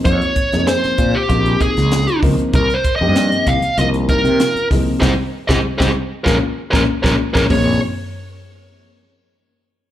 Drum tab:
HH |xxxxxxx-xxxxxxox|xxx-xxxxxxxxxxo-|----------------|o---------------|
SD |---ooo-----oo---|----o-------o-o-|o--o-o--o--o-o-o|----------------|
FT |----------------|----------------|----------------|o---------------|
BD |o-o---o-o-o---o-|o-o---o---o---o-|o--o-o--o--o-o-o|o---------------|